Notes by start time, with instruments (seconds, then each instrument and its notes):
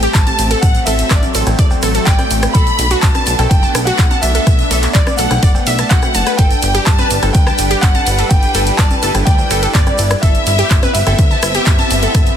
Already playing: supersaw synth A3 C4 G4, violin section G5, grand piano G5
0.02 synth pluck G4, closed hi-hat, shaker
0.13 analog synth bass A1, violin section A5, grand piano A5, kick, clap, closed hi-hat, ride, shaker
0.27 synth pluck A5, closed hi-hat, high conga, shaker
0.39 analog synth bass A1, open hi-hat, ride, shaker
0.50 synth pluck A4, closed hi-hat, shaker
0.61 analog synth bass A1, supersaw synth F#3, violin section F#5, grand piano F#5, kick, closed hi-hat, ride, shaker
0.75 closed hi-hat, shaker
0.85 analog synth bass A1, synth pluck A4, grand piano E5, violin section E5, open hi-hat, ride, shaker
0.99 closed hi-hat, shaker
1.10 analog synth bass A1, synth pluck D5, kick, cross-stick, clap, closed hi-hat, ride, shaker
1.23 closed hi-hat, high conga, shaker
1.35 analog synth bass A1, synth pluck A4, open hi-hat, ride, shaker
1.46 analog synth bass A1, cross-stick, closed hi-hat, cowbell, shaker
1.59 analog synth bass E2, synth pluck D5, kick, closed hi-hat, ride, shaker
1.71 cowbell, shaker
1.82 analog synth bass A1, synth pluck A4, cross-stick, open hi-hat, ride, shaker
1.95 synth pluck A4, closed hi-hat, shaker
2.05 analog synth bass A1, synth pluck D5, violin section G5, grand piano G5, kick, clap, closed hi-hat, ride, shaker
2.19 cross-stick, closed hi-hat, cowbell, high conga, shaker
2.31 analog synth bass A1, open hi-hat, ride, shaker
2.43 cross-stick, closed hi-hat, shaker
2.53 analog synth bass B1, supersaw synth B3 D4, synth pluck A4, violin section B5, grand piano B5, kick, closed hi-hat, ride, shaker
2.67 closed hi-hat, shaker
2.79 analog synth bass B1, open hi-hat, ride, shaker
2.91 synth pluck F#4, closed hi-hat, shaker
3.01 analog synth bass B1, violin section A5, grand piano A5, kick, clap, closed hi-hat, ride, shaker
3.15 synth pluck A5, cross-stick, closed hi-hat, high conga, shaker
3.27 analog synth bass B1, open hi-hat, ride, shaker
3.39 analog synth bass B1, synth pluck A4, cross-stick, closed hi-hat, cowbell, shaker
3.49 violin section G5, grand piano G5, kick, closed hi-hat, ride, shaker
3.63 synth pluck A5, shaker
3.75 analog synth bass B1, cross-stick, open hi-hat, ride, shaker
3.85 synth pluck F#4, grand piano F#5, violin section F#5, closed hi-hat, shaker
3.98 analog synth bass B1, kick, clap, closed hi-hat, ride, shaker
4.11 synth pluck A5, closed hi-hat, high conga, shaker
4.21 analog synth bass B1, violin section E5, grand piano E5, open hi-hat, ride, shaker
4.35 synth pluck A4, closed hi-hat, shaker
4.47 analog synth bass B1, kick, cross-stick, closed hi-hat, ride, shaker
4.59 closed hi-hat, shaker
4.71 analog synth bass B1, synth pluck A4, open hi-hat, ride, shaker
4.83 clap, closed hi-hat, shaker
4.93 analog synth bass B1, grand piano D5, violin section D5, synth pluck D5, kick, clap, closed hi-hat, ride, shaker
5.07 cross-stick, closed hi-hat, high conga, shaker
5.17 analog synth bass B1, synth pluck A4, grand piano F#5, violin section F#5, open hi-hat, ride, shaker
5.31 analog synth bass B1, cross-stick, closed hi-hat, cowbell, shaker
5.43 analog synth bass F#1, synth pluck D5, kick, closed hi-hat, ride, shaker
5.55 cowbell, shaker
5.67 analog synth bass B1, synth pluck E5, open hi-hat, ride, shaker
5.78 synth pluck A5, cross-stick, closed hi-hat, shaker
5.89 analog synth bass B1, synth pluck F#4, violin section F#5, grand piano F#5, kick, clap, closed hi-hat, ride, shaker
6.02 cross-stick, closed hi-hat, cowbell, high conga, shaker
6.14 analog synth bass F#1, synth pluck A5, open hi-hat, ride, shaker
6.26 synth pluck B4, cross-stick, closed hi-hat, shaker
6.37 analog synth bass G1, supersaw synth G3 D4 B4, synth pluck A4, violin section G5, grand piano G5, kick, closed hi-hat, ride, shaker
6.51 closed hi-hat, shaker
6.62 analog synth bass G1, open hi-hat, ride, shaker
6.75 synth pluck G4, closed hi-hat, shaker
6.85 analog synth bass G1, violin section A5, grand piano A5, kick, cross-stick, clap, closed hi-hat, ride, shaker
6.99 synth pluck B4, closed hi-hat, high conga, shaker
7.10 analog synth bass G1, open hi-hat, ride, shaker
7.23 analog synth bass G1, synth pluck A4, cross-stick, closed hi-hat, cowbell, shaker
7.33 analog synth bass D2, grand piano G5, violin section G5, kick, closed hi-hat, ride, shaker
7.47 synth pluck A5, cross-stick, shaker
7.58 analog synth bass G1, open hi-hat, ride, shaker
7.71 synth pluck G4, closed hi-hat, shaker
7.81 analog synth bass G1, violin section F#5, grand piano F#5, kick, clap, closed hi-hat, ride, shaker
7.94 synth pluck A5, closed hi-hat, high conga, shaker
8.07 analog synth bass G1, open hi-hat, ride, shaker
8.18 synth pluck A4, closed hi-hat, shaker
8.29 analog synth bass G1, supersaw synth E4, grand piano G5, violin section G5, kick, closed hi-hat, ride, shaker
8.43 closed hi-hat, shaker
8.54 analog synth bass G1, synth pluck A4, open hi-hat, ride, shaker
8.67 closed hi-hat, shaker
8.77 analog synth bass G1, synth pluck D5, grand piano A5, violin section A5, kick, cross-stick, clap, closed hi-hat, ride, shaker
8.91 closed hi-hat, high conga, shaker
9.03 analog synth bass G1, synth pluck A4, open hi-hat, ride, shaker
9.15 analog synth bass G1, cross-stick, closed hi-hat, cowbell, shaker
9.25 analog synth bass D2, synth pluck D5, violin section G5, grand piano G5, kick, closed hi-hat, ride, shaker
9.38 cowbell, shaker
9.51 analog synth bass G1, synth pluck A4, cross-stick, open hi-hat, ride, shaker
9.62 synth pluck A4, closed hi-hat, shaker
9.73 analog synth bass G1, violin section D5, grand piano D5, synth pluck D5, kick, clap, closed hi-hat, ride, shaker
9.86 cross-stick, closed hi-hat, cowbell, high conga, shaker
9.98 analog synth bass G1, open hi-hat, ride, shaker
10.10 cross-stick, closed hi-hat, shaker
10.21 analog synth bass G1, supersaw synth B3 C4, synth pluck A4, violin section E5, grand piano E5, kick, closed hi-hat, ride, shaker
10.35 closed hi-hat, shaker
10.46 analog synth bass G1, open hi-hat, ride, shaker
10.59 synth pluck G4, closed hi-hat, shaker
10.70 analog synth bass G1, kick, clap, closed hi-hat, ride, shaker
10.83 synth pluck B4, cross-stick, closed hi-hat, high conga, shaker
10.93 analog synth bass G1, grand piano E5, violin section E5, open hi-hat, ride, shaker
11.07 analog synth bass G1, synth pluck A4, cross-stick, closed hi-hat, cowbell, shaker
11.19 analog synth bass D2, kick, closed hi-hat, ride, shaker
11.30 synth pluck A5, shaker
11.43 analog synth bass G1, cross-stick, open hi-hat, ride, shaker
11.54 synth pluck G4, closed hi-hat, shaker
11.66 analog synth bass G1, kick, clap, closed hi-hat, ride, shaker
11.79 synth pluck A5, closed hi-hat, high conga, shaker
11.91 analog synth bass G1, open hi-hat, ride, shaker
12.02 synth pluck A4, closed hi-hat, shaker
12.15 analog synth bass G1, kick, cross-stick, closed hi-hat, ride, shaker
12.26 closed hi-hat, shaker